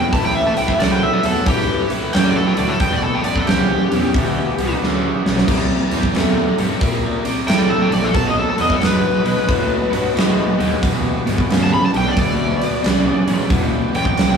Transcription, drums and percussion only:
0.13 kick, open hi-hat
0.57 open hi-hat
0.68 kick
0.80 snare, open hi-hat
1.23 open hi-hat
1.46 kick, open hi-hat
1.90 open hi-hat
2.13 snare, open hi-hat
2.57 open hi-hat
2.80 kick, open hi-hat
3.24 open hi-hat
3.36 kick
3.47 snare, open hi-hat
3.92 open hi-hat
4.14 kick, open hi-hat
4.58 open hi-hat
4.84 snare
5.26 snare
5.38 snare
5.48 kick, crash
5.91 open hi-hat
6.03 kick
6.15 snare, open hi-hat
6.58 open hi-hat
6.81 kick, open hi-hat
7.25 open hi-hat
7.48 snare, open hi-hat
7.92 open hi-hat
8.14 kick, open hi-hat
8.58 open hi-hat
8.70 kick
8.81 snare, open hi-hat
9.26 open hi-hat
9.49 kick, open hi-hat
9.93 open hi-hat
10.17 snare, open hi-hat
10.60 open hi-hat
10.83 kick, open hi-hat
11.27 open hi-hat
11.38 kick
11.50 snare, open hi-hat
11.94 open hi-hat
12.17 kick, open hi-hat
12.62 open hi-hat
12.84 snare, open hi-hat
13.28 open hi-hat
13.50 kick, open hi-hat
13.95 open hi-hat
14.05 kick
14.18 snare, open hi-hat

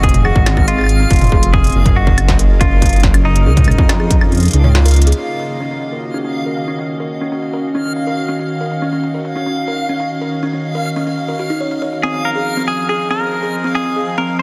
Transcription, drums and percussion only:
0.03 kick, closed hi-hat
0.09 closed hi-hat
0.14 closed hi-hat, mid tom
0.25 claves
0.36 kick
0.46 snare, closed hi-hat, claves
0.57 kick, claves
0.68 closed hi-hat
0.78 claves
0.81 claves
0.84 claves
0.86 closed hi-hat, claves
1.11 kick, closed hi-hat
1.13 closed hi-hat
1.16 closed hi-hat
1.19 closed hi-hat
1.21 closed hi-hat, mid tom
1.24 closed hi-hat
1.27 closed hi-hat
1.29 kick, closed hi-hat
1.43 closed hi-hat
1.53 kick
1.64 closed hi-hat
1.67 closed hi-hat
1.70 closed hi-hat
1.72 closed hi-hat
1.86 kick, closed hi-hat, mid tom
2.07 kick
2.18 closed hi-hat, claves
2.28 kick, snare
2.39 closed hi-hat
2.61 kick, closed hi-hat
2.82 kick, closed hi-hat
2.86 closed hi-hat
2.89 closed hi-hat
2.93 closed hi-hat
2.96 closed hi-hat
3.00 kick, snare, closed hi-hat
3.14 closed hi-hat, claves
3.36 closed hi-hat
3.57 kick, closed hi-hat, mid tom
3.64 closed hi-hat, mid tom, claves
3.71 closed hi-hat
3.78 kick
3.89 snare, closed hi-hat, claves
4.00 claves
4.11 kick, closed hi-hat
4.21 claves
4.32 closed hi-hat
4.35 closed hi-hat
4.37 closed hi-hat
4.40 closed hi-hat
4.43 closed hi-hat
4.45 closed hi-hat
4.48 closed hi-hat
4.51 closed hi-hat
4.53 closed hi-hat
4.64 mid tom
4.75 snare
4.86 closed hi-hat
4.88 closed hi-hat
4.91 closed hi-hat
4.94 closed hi-hat
4.96 closed hi-hat
5.02 closed hi-hat
5.07 closed hi-hat
5.12 closed hi-hat
5.28 closed hi-hat
5.61 closed hi-hat
5.82 closed hi-hat
6.03 closed hi-hat
6.14 open hi-hat
6.25 closed hi-hat
6.57 closed hi-hat
6.78 closed hi-hat
7.00 closed hi-hat
7.32 closed hi-hat
7.43 open hi-hat
7.53 closed hi-hat
7.75 closed hi-hat
7.96 closed hi-hat
8.28 closed hi-hat
8.39 open hi-hat
8.50 closed hi-hat
8.55 closed hi-hat
8.61 closed hi-hat
8.66 closed hi-hat
8.71 closed hi-hat
9.04 closed hi-hat
9.25 closed hi-hat
9.46 closed hi-hat
9.57 open hi-hat
9.68 closed hi-hat
10.00 closed hi-hat
10.21 closed hi-hat
10.43 closed hi-hat
10.86 open hi-hat
10.96 closed hi-hat
11.18 closed hi-hat
11.39 closed hi-hat
11.71 closed hi-hat
11.82 open hi-hat
11.93 closed hi-hat
12.14 closed hi-hat
12.46 closed hi-hat
12.68 closed hi-hat
12.89 closed hi-hat
12.95 closed hi-hat
13.00 closed hi-hat, open hi-hat
13.05 closed hi-hat
13.11 closed hi-hat
13.43 closed hi-hat
13.64 closed hi-hat
13.86 closed hi-hat
14.18 closed hi-hat
14.28 open hi-hat

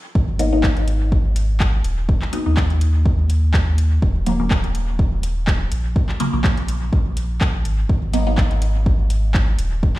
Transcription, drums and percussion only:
0.15 kick
0.39 closed hi-hat
0.64 kick, clap
0.77 closed hi-hat
0.88 closed hi-hat
1.12 kick
1.36 closed hi-hat
1.60 kick, clap
1.84 closed hi-hat
2.09 kick
2.22 clap
2.33 closed hi-hat
2.57 kick, clap
2.70 closed hi-hat
2.81 closed hi-hat
3.06 kick
3.30 closed hi-hat
3.54 kick, clap
3.78 closed hi-hat
4.02 kick
4.26 closed hi-hat
4.51 kick, clap
4.64 closed hi-hat
4.75 closed hi-hat
4.99 kick
5.23 closed hi-hat
5.47 kick, clap
5.72 closed hi-hat
5.96 kick
6.09 clap
6.20 closed hi-hat
6.44 kick, clap
6.57 closed hi-hat
6.68 closed hi-hat
6.93 kick
7.17 closed hi-hat
7.41 kick, clap
7.65 closed hi-hat
7.89 kick
8.14 closed hi-hat
8.38 kick, clap
8.51 closed hi-hat
8.62 closed hi-hat
8.86 kick
9.10 closed hi-hat
9.34 kick, clap
9.59 closed hi-hat
9.83 kick
9.96 clap

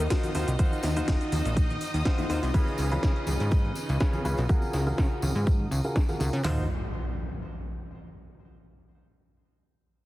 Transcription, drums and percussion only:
0.10 kick, snare, closed hi-hat, tambourine, shaker
0.23 closed hi-hat, tambourine, high conga, shaker
0.35 open hi-hat, tambourine
0.48 closed hi-hat, tambourine, shaker
0.59 kick, closed hi-hat, tambourine, high conga, shaker
0.73 tambourine, shaker
0.83 snare, open hi-hat, tambourine
0.96 closed hi-hat, tambourine, high conga, shaker
1.08 kick, snare, closed hi-hat, tambourine, shaker
1.21 closed hi-hat, shaker
1.32 open hi-hat, tambourine, high conga
1.45 closed hi-hat, tambourine, shaker
1.57 kick, closed hi-hat, tambourine, shaker
1.70 high conga, shaker
1.81 open hi-hat, tambourine
1.94 closed hi-hat, tambourine, shaker
2.05 kick, snare, closed hi-hat, tambourine, shaker
2.19 closed hi-hat, tambourine, high conga, shaker
2.30 open hi-hat, tambourine
2.43 closed hi-hat, tambourine, shaker
2.54 kick, closed hi-hat, tambourine, high conga, shaker
2.68 tambourine, shaker
2.78 open hi-hat, tambourine
2.91 closed hi-hat, tambourine, high conga, shaker
3.03 kick, snare, closed hi-hat, tambourine, shaker
3.16 closed hi-hat, shaker
3.27 open hi-hat, tambourine, high conga
3.40 closed hi-hat, tambourine, shaker
3.51 kick, closed hi-hat, tambourine, shaker
3.65 high conga, shaker
3.75 open hi-hat, tambourine
3.89 closed hi-hat, tambourine, shaker
4.00 kick, snare, closed hi-hat, tambourine, shaker
4.13 closed hi-hat, tambourine, high conga, shaker
4.25 open hi-hat, tambourine
4.38 closed hi-hat, tambourine, shaker
4.49 kick, closed hi-hat, tambourine, high conga, shaker
4.62 tambourine, shaker
4.73 snare, open hi-hat, tambourine
4.86 closed hi-hat, tambourine, high conga, shaker
4.98 kick, snare, closed hi-hat, tambourine
5.11 closed hi-hat, shaker
5.22 open hi-hat, tambourine, high conga
5.36 closed hi-hat, tambourine, shaker
5.47 kick, closed hi-hat, tambourine
5.59 high conga, shaker
5.71 open hi-hat, tambourine
5.84 closed hi-hat, tambourine, shaker
5.96 kick, snare, closed hi-hat, tambourine
6.08 closed hi-hat, tambourine, high conga
6.20 open hi-hat, tambourine
6.33 closed hi-hat, tambourine
6.44 snare, floor tom, open hi-hat

